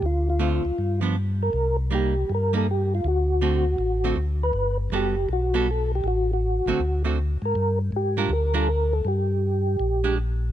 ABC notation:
X:1
M:4/4
L:1/8
Q:"Swing" 1/4=160
K:Gm
V:1 name="Tonewheel organ"
F F4 z2 B- | B z G2 B A G F | ^F6 z =B- | =B z G2 ^F2 A G |
^F F4 z2 B- | B z G2 B A B A | G6 z2 |]
V:2 name="Hollow-body jazz guitar"
z2 [D,A,CF] z2 [F,=B,D] z2 | z2 [G,B,E] z2 [G,B,E] z2 | z2 [D,A,C^F] z2 [D,A,CF] z2 | z2 [G,=B,^FA] z2 [G,B,FA] z2 |
z3 [D,A,C^F] z [D,A,CF] z2 | z3 [G,DFB] z [G,DFB] z2 | z4 z [_A,DG] z2 |]
V:3 name="Tonewheel organ" clef=bass
D,,3 D,, G,,4 | C,,4 G,,4 | D,,4 A,,,2 D,,2 | G,,,2 ^F,,,2 =B,,,4 |
A,,,3 A,,, D,,3 _A,, | G,,2 _A,,2 D,,4 | G,,4 B,,,4 |]